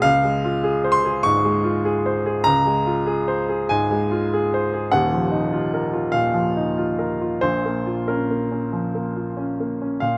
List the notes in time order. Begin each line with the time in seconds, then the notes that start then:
0.02 C#2 F5
0.24 G#3
0.44 F4
0.64 G#4
0.84 C5
0.92 C6
1.05 G#4
1.23 G#2 C#6
1.44 G#3
1.64 F4
1.85 G#4
2.06 C5
2.26 G#4
2.44 C#2 A#5
2.66 G#3
2.87 F4
3.06 G#4
3.28 C5
3.49 G#4
3.69 G#2 G#5
3.91 G#3
4.11 F4
4.34 G#4
4.54 C5
4.74 G#4
4.91 D#1 D#2 F#5
5.13 F3
5.32 D#4
5.53 F4
5.74 A#4
5.93 F4
6.12 A#2 F5
6.34 F3
6.57 D#4
6.78 F4
6.99 A#4
7.21 F4
7.41 A#1 A#2 C5
7.66 A#3
7.86 F4
8.08 C#4 A#4
8.31 A#3
8.51 C#4
8.73 F3
8.95 A#3
9.16 F4
9.37 C#4
9.60 A#3
9.82 C#4
10.00 A#2 F5